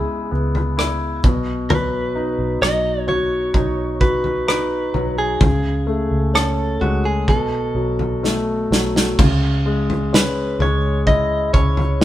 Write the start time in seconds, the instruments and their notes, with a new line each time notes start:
Already playing: grand piano C#3 G#3 B3 E4, clean electric guitar G#4
0.31 fingered electric bass C#2, grand piano B3
0.55 floor tom
0.77 grand piano E4, cross-stick
1.24 fingered electric bass B1, grand piano B2, kick, floor tom
1.70 grand piano F#3, clean electric guitar B4, floor tom
2.15 grand piano D#4
2.39 fingered electric bass B1
2.62 fingered electric bass B1, grand piano F#3, clean electric guitar D#5, cross-stick
3.08 grand piano F#4, clean electric guitar C#5, floor tom
3.54 fingered electric bass B1, grand piano D#4, kick, floor tom
4.01 grand piano F#4, clean electric guitar B4, kick
4.24 floor tom
4.48 grand piano D#4, clean electric guitar B4, cross-stick
4.94 fingered electric bass B1, grand piano F#3, floor tom
5.18 clean electric guitar G#4
5.40 fingered electric bass C#2, grand piano C#3, kick, floor tom
5.87 grand piano A3
6.11 fingered electric bass C#2
6.34 grand piano C#4, clean electric guitar A4, cross-stick
6.80 fingered electric bass C#2, grand piano G#3, clean electric guitar F#4, floor tom
7.05 clean electric guitar G#4
7.28 fingered electric bass B1, grand piano B2, clean electric guitar A4, kick, floor tom
7.75 fingered electric bass B1, grand piano F#3
7.99 floor tom
8.23 grand piano A3, snare
8.71 fingered electric bass B1, grand piano F#3, snare
8.96 snare
9.19 fingered electric bass C#2, grand piano C#3, kick, floor tom, crash
9.66 grand piano G#3
9.90 floor tom
10.13 grand piano C#4, clean electric guitar B4, snare
10.59 fingered electric bass C#2, grand piano G#3, clean electric guitar C#5, floor tom
11.07 grand piano E4, clean electric guitar D#5, kick, floor tom
11.54 fingered electric bass C#2, grand piano C#4, clean electric guitar C#5, kick
11.77 floor tom
12.01 grand piano G#3